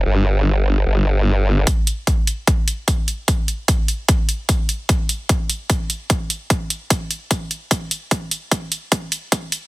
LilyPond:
<<
  \new Staff \with { instrumentName = "Wobble bass" } { \clef bass \time 4/4 \key f \lydian \tempo 4 = 149 g,,2 g,,2 | r1 | r1 | r1 |
r1 | r1 | }
  \new DrumStaff \with { instrumentName = "Drums" } \drummode { \time 4/4 r4 r4 r4 r4 | <hh bd>8 hh8 <hh bd>8 hh8 <hh bd>8 hh8 <hh bd>8 hh8 | <hh bd>8 hh8 <hh bd>8 hh8 <hh bd>8 hh8 <hh bd>8 hh8 | <hh bd>8 hh8 <hh bd>8 hh8 <hh bd>8 hh8 <hh bd>8 hh8 |
<hh bd>8 hh8 <hh bd>8 hh8 <hh bd>8 hh8 <hh bd>8 hh8 | <hh bd>8 hh8 <hh bd>8 hh8 <hh bd>8 hh8 <hh bd>8 hh8 | }
>>